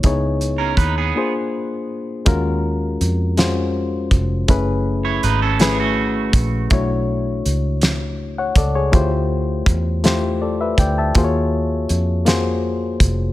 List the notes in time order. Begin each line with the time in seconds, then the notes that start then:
0.03 C#2 B3 D#4 E4 G#4 C#5, kick, closed hi-hat
0.41 closed hi-hat
0.58 C#4 A#4
0.77 D#2 D#4 B4, kick, closed hi-hat
0.98 B3 G#4
1.15 A#3 D4 F4 G#4 C5
2.25 D#2 G#3 C#4 F4 F#4 A#4, kick, closed hi-hat
3.01 F2, closed hi-hat
3.37 G#3 C#4 F4 F#4 C5, snare, closed hi-hat
4.11 F1, kick, closed hi-hat
4.48 F#1 A3 C#4 E4 G#4 B4, kick, closed hi-hat
5.05 E4 C#5
5.23 G#1 D#4 B4, closed hi-hat
5.42 C#4 A4
5.60 A3 B3 C#4 E4 G#4 B4, snare, closed hi-hat
5.80 A3 F#4
6.33 A#1, kick, closed hi-hat
6.70 B1 A3 D4 E4 F#4 C#5, kick, closed hi-hat
7.46 C#2, closed hi-hat
7.81 snare, closed hi-hat
8.38 C#5 F#5
8.56 C#2 A4 D5, kick, closed hi-hat
8.75 G#4 C#5
8.92 D2 A3 E4 F4 G4 C5, kick, closed hi-hat
9.66 E2, kick, closed hi-hat
10.04 A3 E4 F4 G4 C5, snare, closed hi-hat
10.42 A4 D5
10.61 B4 E5
10.78 D2 D5 G5, kick, closed hi-hat
10.98 E5 A5
11.15 D#2 A#3 F4 F#4 G#4 C5, kick, closed hi-hat
11.24 C#5
11.89 F2, closed hi-hat
12.25 A#3 F4 F#4 G#4 C5, snare, closed hi-hat
13.00 F1, kick, closed hi-hat